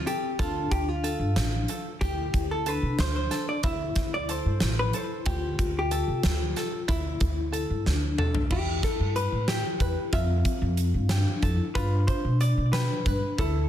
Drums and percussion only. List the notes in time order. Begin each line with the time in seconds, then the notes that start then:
0.07 closed hi-hat
0.39 kick, closed hi-hat
0.72 kick, closed hi-hat
1.04 closed hi-hat
1.36 snare, closed hi-hat
1.68 closed hi-hat
2.01 kick, closed hi-hat
2.34 kick, closed hi-hat
2.66 closed hi-hat
2.99 snare, closed hi-hat
3.31 snare, closed hi-hat
3.63 kick, closed hi-hat
3.96 kick, snare, closed hi-hat
4.29 closed hi-hat
4.60 snare, closed hi-hat
4.93 closed hi-hat
5.26 kick, closed hi-hat
5.59 kick, closed hi-hat
5.91 closed hi-hat
6.23 snare, closed hi-hat
6.56 snare, closed hi-hat
6.88 kick, closed hi-hat
7.20 kick, closed hi-hat
7.53 closed hi-hat
7.86 snare
8.18 mid tom
8.35 floor tom
8.50 kick, crash
8.83 kick, snare, closed hi-hat
9.16 closed hi-hat
9.48 snare, closed hi-hat
9.80 kick, closed hi-hat
10.13 kick, closed hi-hat
10.45 kick, closed hi-hat
10.77 closed hi-hat
11.09 snare, closed hi-hat
11.42 kick, closed hi-hat
11.75 kick, closed hi-hat
12.08 kick, closed hi-hat
12.41 closed hi-hat
12.73 snare, closed hi-hat
13.06 kick, closed hi-hat
13.38 kick, closed hi-hat